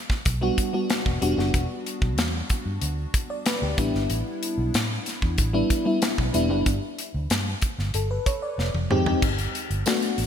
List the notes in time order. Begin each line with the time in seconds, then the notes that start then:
0.10 kick, snare
0.25 B1, kick, closed hi-hat
0.41 G3 B3 D4 F#4
0.58 kick, closed hi-hat
0.73 G3 B3 D4 F#4
0.90 snare, closed hi-hat
1.06 E1, kick
1.21 E1 G3 B3 D4 F#4, closed hi-hat
1.37 F#1 G3 B3 D4 F#4, snare
1.54 E1, kick, closed hi-hat
1.86 closed hi-hat
2.02 B1, kick
2.18 E2, snare, closed hi-hat
2.50 kick, closed hi-hat
2.66 G2
2.82 D2, closed hi-hat
3.14 kick, closed hi-hat
3.30 D5
3.46 B4, snare, closed hi-hat
3.62 D2 G4
3.77 A1 G3 B3 D4 E4, kick, closed hi-hat
3.94 G1, snare
4.09 A1, closed hi-hat
4.43 closed hi-hat
4.58 B1
4.74 A2, snare, closed hi-hat
5.06 snare, closed hi-hat
5.22 E2, kick
5.38 A1, kick, closed hi-hat
5.53 G3 B3 D4 E4
5.70 kick, closed hi-hat
5.85 G3 B3 D4 E4
6.02 snare, closed hi-hat
6.18 B1, kick
6.34 E1 G3 B3 D4 E4, closed hi-hat
6.49 F#1 G3 B3 D4 E4
6.66 G1, kick, closed hi-hat
6.99 closed hi-hat
7.14 D2
7.30 G2, snare, closed hi-hat
7.62 kick, closed hi-hat
7.78 G1, snare
7.94 G1 A4, closed hi-hat
8.11 B4
8.26 C#5, kick, closed hi-hat
8.42 D5
8.58 F1, snare
8.74 F1, high tom
8.90 F2 G#3 C4 D#4 G4, mid tom
9.06 G#3 C4 D#4 G4, floor tom
9.22 G1, kick, crash
9.38 closed hi-hat
9.55 closed hi-hat
9.70 G1, closed hi-hat
9.86 A3 B3 D4 F#4, snare, closed hi-hat, tambourine
10.02 closed hi-hat
10.18 A1, open hi-hat